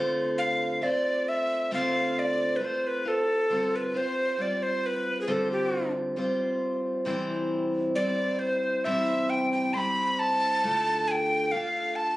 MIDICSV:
0, 0, Header, 1, 3, 480
1, 0, Start_track
1, 0, Tempo, 892857
1, 1874, Time_signature, 4, 2, 24, 8
1, 6540, End_track
2, 0, Start_track
2, 0, Title_t, "Recorder"
2, 0, Program_c, 0, 74
2, 205, Note_on_c, 0, 77, 93
2, 448, Note_on_c, 0, 74, 99
2, 456, Note_off_c, 0, 77, 0
2, 691, Note_on_c, 0, 76, 100
2, 699, Note_off_c, 0, 74, 0
2, 922, Note_off_c, 0, 76, 0
2, 934, Note_on_c, 0, 77, 98
2, 1177, Note_on_c, 0, 74, 87
2, 1185, Note_off_c, 0, 77, 0
2, 1378, Note_on_c, 0, 71, 66
2, 1386, Note_off_c, 0, 74, 0
2, 1422, Note_on_c, 0, 72, 87
2, 1430, Note_off_c, 0, 71, 0
2, 1542, Note_on_c, 0, 71, 83
2, 1550, Note_off_c, 0, 72, 0
2, 1655, Note_on_c, 0, 69, 101
2, 1663, Note_off_c, 0, 71, 0
2, 2019, Note_on_c, 0, 71, 84
2, 2027, Note_off_c, 0, 69, 0
2, 2135, Note_on_c, 0, 72, 97
2, 2143, Note_off_c, 0, 71, 0
2, 2374, Note_on_c, 0, 74, 88
2, 2382, Note_off_c, 0, 72, 0
2, 2487, Note_on_c, 0, 72, 98
2, 2495, Note_off_c, 0, 74, 0
2, 2613, Note_on_c, 0, 71, 90
2, 2621, Note_off_c, 0, 72, 0
2, 2799, Note_off_c, 0, 71, 0
2, 2802, Note_on_c, 0, 68, 66
2, 2852, Note_on_c, 0, 69, 85
2, 2860, Note_off_c, 0, 68, 0
2, 2963, Note_off_c, 0, 69, 0
2, 2965, Note_on_c, 0, 67, 76
2, 3183, Note_off_c, 0, 67, 0
2, 4276, Note_on_c, 0, 74, 95
2, 4511, Note_on_c, 0, 72, 102
2, 4519, Note_off_c, 0, 74, 0
2, 4755, Note_on_c, 0, 76, 109
2, 4763, Note_off_c, 0, 72, 0
2, 4999, Note_on_c, 0, 79, 107
2, 5007, Note_off_c, 0, 76, 0
2, 5117, Note_off_c, 0, 79, 0
2, 5120, Note_on_c, 0, 79, 105
2, 5235, Note_on_c, 0, 84, 102
2, 5243, Note_off_c, 0, 79, 0
2, 5253, Note_on_c, 0, 83, 111
2, 5259, Note_off_c, 0, 84, 0
2, 5479, Note_on_c, 0, 81, 124
2, 5487, Note_off_c, 0, 83, 0
2, 5955, Note_on_c, 0, 80, 94
2, 5963, Note_off_c, 0, 81, 0
2, 5973, Note_on_c, 0, 79, 102
2, 5979, Note_off_c, 0, 80, 0
2, 6191, Note_on_c, 0, 77, 96
2, 6199, Note_off_c, 0, 79, 0
2, 6428, Note_on_c, 0, 81, 104
2, 6436, Note_off_c, 0, 77, 0
2, 6540, Note_off_c, 0, 81, 0
2, 6540, End_track
3, 0, Start_track
3, 0, Title_t, "Steel-string acoustic guitar"
3, 0, Program_c, 1, 25
3, 0, Note_on_c, 1, 50, 75
3, 0, Note_on_c, 1, 57, 80
3, 0, Note_on_c, 1, 60, 75
3, 0, Note_on_c, 1, 65, 88
3, 0, Note_on_c, 1, 72, 86
3, 431, Note_off_c, 1, 57, 0
3, 437, Note_on_c, 1, 57, 57
3, 439, Note_off_c, 1, 60, 0
3, 441, Note_on_c, 1, 60, 63
3, 442, Note_off_c, 1, 65, 0
3, 444, Note_off_c, 1, 72, 0
3, 444, Note_on_c, 1, 65, 56
3, 446, Note_on_c, 1, 72, 63
3, 457, Note_off_c, 1, 50, 0
3, 915, Note_off_c, 1, 57, 0
3, 920, Note_on_c, 1, 50, 87
3, 922, Note_off_c, 1, 60, 0
3, 922, Note_on_c, 1, 57, 73
3, 923, Note_off_c, 1, 65, 0
3, 924, Note_on_c, 1, 60, 85
3, 925, Note_off_c, 1, 72, 0
3, 925, Note_on_c, 1, 65, 89
3, 928, Note_on_c, 1, 72, 92
3, 1391, Note_off_c, 1, 57, 0
3, 1397, Note_off_c, 1, 50, 0
3, 1397, Note_on_c, 1, 57, 57
3, 1398, Note_off_c, 1, 60, 0
3, 1399, Note_off_c, 1, 65, 0
3, 1400, Note_on_c, 1, 60, 66
3, 1404, Note_off_c, 1, 72, 0
3, 1405, Note_on_c, 1, 65, 62
3, 1406, Note_on_c, 1, 72, 60
3, 1633, Note_off_c, 1, 72, 0
3, 1635, Note_off_c, 1, 57, 0
3, 1636, Note_off_c, 1, 65, 0
3, 1637, Note_off_c, 1, 60, 0
3, 1639, Note_on_c, 1, 72, 41
3, 1642, Note_on_c, 1, 65, 45
3, 1647, Note_on_c, 1, 60, 40
3, 1876, Note_off_c, 1, 72, 0
3, 1878, Note_off_c, 1, 65, 0
3, 1879, Note_off_c, 1, 60, 0
3, 1881, Note_on_c, 1, 50, 63
3, 1881, Note_on_c, 1, 55, 72
3, 1885, Note_on_c, 1, 60, 67
3, 1889, Note_on_c, 1, 65, 75
3, 1889, Note_on_c, 1, 72, 70
3, 2112, Note_off_c, 1, 72, 0
3, 2117, Note_off_c, 1, 50, 0
3, 2118, Note_off_c, 1, 55, 0
3, 2118, Note_on_c, 1, 72, 54
3, 2119, Note_off_c, 1, 60, 0
3, 2119, Note_off_c, 1, 65, 0
3, 2125, Note_on_c, 1, 65, 45
3, 2126, Note_on_c, 1, 60, 43
3, 2346, Note_off_c, 1, 60, 0
3, 2351, Note_on_c, 1, 55, 54
3, 2352, Note_off_c, 1, 65, 0
3, 2353, Note_on_c, 1, 60, 64
3, 2356, Note_off_c, 1, 72, 0
3, 2358, Note_on_c, 1, 65, 68
3, 2832, Note_off_c, 1, 65, 0
3, 2834, Note_off_c, 1, 55, 0
3, 2835, Note_off_c, 1, 60, 0
3, 2836, Note_on_c, 1, 50, 91
3, 2837, Note_on_c, 1, 55, 87
3, 2837, Note_on_c, 1, 60, 81
3, 2838, Note_on_c, 1, 65, 87
3, 2840, Note_on_c, 1, 72, 95
3, 3307, Note_off_c, 1, 55, 0
3, 3310, Note_off_c, 1, 60, 0
3, 3313, Note_on_c, 1, 55, 67
3, 3315, Note_off_c, 1, 50, 0
3, 3316, Note_on_c, 1, 60, 72
3, 3317, Note_off_c, 1, 65, 0
3, 3317, Note_off_c, 1, 72, 0
3, 3322, Note_on_c, 1, 65, 80
3, 3325, Note_on_c, 1, 72, 70
3, 3789, Note_off_c, 1, 60, 0
3, 3790, Note_off_c, 1, 55, 0
3, 3790, Note_on_c, 1, 48, 88
3, 3794, Note_off_c, 1, 72, 0
3, 3795, Note_on_c, 1, 60, 74
3, 3796, Note_on_c, 1, 52, 87
3, 3797, Note_off_c, 1, 65, 0
3, 3797, Note_on_c, 1, 55, 79
3, 3799, Note_on_c, 1, 64, 90
3, 3801, Note_on_c, 1, 72, 87
3, 4271, Note_off_c, 1, 55, 0
3, 4272, Note_off_c, 1, 48, 0
3, 4275, Note_off_c, 1, 52, 0
3, 4275, Note_off_c, 1, 60, 0
3, 4277, Note_off_c, 1, 64, 0
3, 4278, Note_off_c, 1, 72, 0
3, 4278, Note_on_c, 1, 55, 62
3, 4281, Note_on_c, 1, 60, 62
3, 4284, Note_on_c, 1, 64, 67
3, 4287, Note_on_c, 1, 72, 67
3, 4753, Note_off_c, 1, 55, 0
3, 4756, Note_off_c, 1, 60, 0
3, 4757, Note_off_c, 1, 64, 0
3, 4757, Note_off_c, 1, 72, 0
3, 4758, Note_on_c, 1, 52, 92
3, 4759, Note_on_c, 1, 48, 97
3, 4760, Note_on_c, 1, 55, 89
3, 4762, Note_on_c, 1, 60, 90
3, 4764, Note_on_c, 1, 64, 90
3, 4764, Note_on_c, 1, 72, 95
3, 5225, Note_off_c, 1, 55, 0
3, 5230, Note_off_c, 1, 60, 0
3, 5232, Note_on_c, 1, 55, 65
3, 5234, Note_off_c, 1, 64, 0
3, 5234, Note_off_c, 1, 72, 0
3, 5236, Note_off_c, 1, 52, 0
3, 5236, Note_on_c, 1, 60, 66
3, 5237, Note_off_c, 1, 48, 0
3, 5241, Note_on_c, 1, 64, 64
3, 5241, Note_on_c, 1, 72, 64
3, 5713, Note_off_c, 1, 55, 0
3, 5715, Note_off_c, 1, 60, 0
3, 5718, Note_off_c, 1, 64, 0
3, 5718, Note_off_c, 1, 72, 0
3, 5719, Note_on_c, 1, 50, 73
3, 5719, Note_on_c, 1, 57, 90
3, 5722, Note_on_c, 1, 62, 72
3, 5723, Note_on_c, 1, 65, 73
3, 5725, Note_on_c, 1, 69, 89
3, 6191, Note_off_c, 1, 57, 0
3, 6194, Note_off_c, 1, 62, 0
3, 6197, Note_off_c, 1, 50, 0
3, 6197, Note_on_c, 1, 57, 65
3, 6199, Note_off_c, 1, 65, 0
3, 6200, Note_off_c, 1, 69, 0
3, 6201, Note_on_c, 1, 62, 59
3, 6205, Note_on_c, 1, 65, 69
3, 6205, Note_on_c, 1, 69, 62
3, 6540, Note_off_c, 1, 57, 0
3, 6540, Note_off_c, 1, 62, 0
3, 6540, Note_off_c, 1, 65, 0
3, 6540, Note_off_c, 1, 69, 0
3, 6540, End_track
0, 0, End_of_file